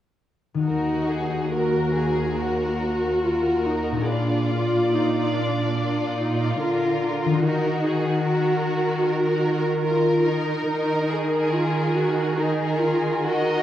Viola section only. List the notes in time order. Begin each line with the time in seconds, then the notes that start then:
0.65 D#4
1.52 F#4
2.37 F#4
3.24 F4
3.67 D#4
4.10 D4
4.52 F4
4.94 D#4
5.36 D4
5.77 D4
6.20 D#4
6.61 F4
7.43 D#4
8.25 F#4
8.66 F#4
9.87 F4
10.28 D#4
11.53 F4
11.96 F#4
12.38 D#4
12.80 F4
13.25 F#4